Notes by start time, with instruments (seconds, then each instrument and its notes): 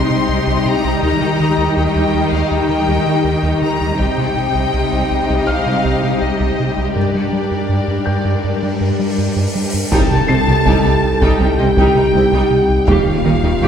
Already playing: cello section C3, ambient pad G3 D#4 G4 G5, viola section G3 D#4, violin section G4 D#5 C6
0.10 analog synth bass C3
0.29 analog synth bass C2
0.47 analog synth bass C2
0.66 analog synth bass C3, violin section A#5
0.84 analog synth bass C2
1.03 analog synth bass D#2, cello section D#3, violin section A#5
1.22 analog synth bass D#3
1.40 analog synth bass D#3
1.58 analog synth bass D#2
1.76 analog synth bass D#2, violin section G5
1.96 analog synth bass D#2
2.14 analog synth bass D#2
2.32 analog synth bass D#2, violin section F5
2.50 analog synth bass D#2, violin section G5
2.69 analog synth bass D#3
2.88 analog synth bass D#2
3.06 analog synth bass D#3
3.24 analog synth bass D#2
3.43 analog synth bass D#2
3.61 analog synth bass D#3, violin section A#5
3.81 analog synth bass D#2
3.99 analog synth bass C2, cello section C3, viola section G3 D#4, ambient pad G3 D#4 G4 G5, violin section G4 D#5 G5, taiko
4.18 analog synth bass C3
4.37 analog synth bass C3
4.55 analog synth bass C2
4.74 analog synth bass C2
4.93 analog synth bass C2
5.11 analog synth bass C2
5.30 analog synth bass C2
5.47 analog synth bass C2, felt piano F5 F6, violin section F5
5.67 analog synth bass C3
5.85 analog synth bass C2
6.03 analog synth bass C3
6.21 analog synth bass C2, violin section D#5
6.40 analog synth bass C2
6.60 analog synth bass C3
6.78 analog synth bass C2
6.95 analog synth bass G2, cello section G2, ambient pad D4 A#4, viola section D4, violin section A#4 D5, cymbal swell
7.15 analog synth bass G3
7.33 analog synth bass G3
7.51 analog synth bass G2
7.69 analog synth bass G2
7.88 analog synth bass G2
8.06 analog synth bass G2, felt piano G5 G6
8.25 analog synth bass G2
8.44 analog synth bass G2
8.63 analog synth bass G3
8.81 analog synth bass G2
8.99 analog synth bass G3
9.18 analog synth bass G2
9.36 analog synth bass G2
9.55 analog synth bass G3
9.74 analog synth bass G2
9.91 tuba C2, double bass section C2, analog synth bass C2, detuned saw bass C2, cello section C3, ambient pad G3 D#4 G4 G5, viola section G3 D#4, french horn section A4, violin section G5 A5, taiko, impact
10.11 analog synth bass C3
10.28 double bass section C2, tuba C2, cello section C3, analog synth bass C3, viola section G3 C4, violin section D#5, felt piano C7
10.47 analog synth bass C2, cello section C3, viola section G3 D#4, violin section G5
10.65 double bass section C2, tuba C2, analog synth bass C2, cello section C3, viola section G3 D#4, violin section G5, taiko
10.83 analog synth bass C2, cello section C3, viola section G3 D#4, violin section G5
11.03 analog synth bass C2
11.21 analog synth bass C2, cello section C3, viola section G3 D#4, violin section G5, taiko
11.40 double bass section C2, tuba C2, analog synth bass C2, cello section C3, viola section G3 D#4, french horn section G4, violin section G5
11.58 cello section C3, analog synth bass C3, viola section G3 C4, violin section D#5
11.76 double bass section C2, analog synth bass C2, tuba C2, cello section C3, viola section G3 D#4, violin section G5, taiko
11.95 cello section C3, analog synth bass C3, viola section G3 D#4, violin section G5
12.14 double bass section C2, analog synth bass C2, tuba C2, cello section C3, viola section G3 C4, violin section D#5
12.32 analog synth bass C2, cello section C3, viola section G3 D#4, violin section G5
12.51 analog synth bass C3
12.69 analog synth bass C2
12.87 detuned saw bass D#1, analog synth bass D#2, tuba D#2, double bass section D#2, cello section D#3, viola section G3 G4, french horn section F4, violin section F5 G5, taiko
13.06 analog synth bass D#3
13.24 double bass section D#2, tuba D#2, analog synth bass D#3, cello section D#3, viola section G3 D#4, violin section D#5
13.43 analog synth bass D#2, cello section D#3, viola section G3 G4, violin section G5
13.62 double bass section D#2, analog synth bass D#2, tuba D#2, cello section D#3, viola section G3 G4, violin section G5, taiko